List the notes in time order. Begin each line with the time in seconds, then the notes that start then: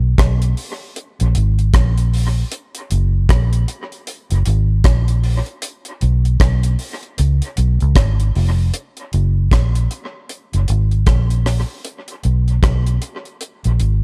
Already playing: B1
0.18 B1, kick, cross-stick, closed hi-hat
0.42 closed hi-hat
0.57 open hi-hat
0.96 closed hi-hat
1.20 A#1, closed hi-hat
1.35 G#1, closed hi-hat
1.59 closed hi-hat
1.74 A#1, kick, cross-stick, closed hi-hat
1.98 closed hi-hat
2.14 open hi-hat
2.52 closed hi-hat
2.75 closed hi-hat
2.91 F#1, closed hi-hat
3.29 A#1, kick, cross-stick, closed hi-hat
3.53 closed hi-hat
3.68 closed hi-hat
3.92 closed hi-hat
4.07 closed hi-hat
4.31 F#1, closed hi-hat
4.46 G#1, closed hi-hat
4.84 A#1, kick, cross-stick, closed hi-hat
5.08 closed hi-hat
5.24 open hi-hat
5.46 closed hi-hat
5.62 closed hi-hat
5.85 closed hi-hat
6.01 B1, closed hi-hat
6.25 closed hi-hat
6.40 B1, kick, cross-stick, closed hi-hat
6.63 closed hi-hat
6.79 open hi-hat
7.03 closed hi-hat
7.18 C#2, closed hi-hat
7.42 closed hi-hat
7.57 B1, closed hi-hat
7.80 C#2, closed hi-hat
7.95 G#1, kick, cross-stick, closed hi-hat
8.20 closed hi-hat
8.35 F1, open hi-hat
8.74 closed hi-hat
8.97 closed hi-hat
9.13 F#1, closed hi-hat
9.51 A#1, kick, cross-stick, closed hi-hat
9.75 closed hi-hat
9.91 closed hi-hat
10.29 closed hi-hat
10.53 F#1, closed hi-hat
10.68 G#1, closed hi-hat
10.91 closed hi-hat
11.06 A#1, kick, cross-stick, closed hi-hat
11.30 closed hi-hat
11.46 cross-stick, open hi-hat
11.85 closed hi-hat
12.08 closed hi-hat
12.23 B1, closed hi-hat
12.48 closed hi-hat
12.63 B1, kick, cross-stick, closed hi-hat
12.86 closed hi-hat
13.02 closed hi-hat
13.25 closed hi-hat
13.41 closed hi-hat
13.64 A#1, closed hi-hat
13.80 G#1, closed hi-hat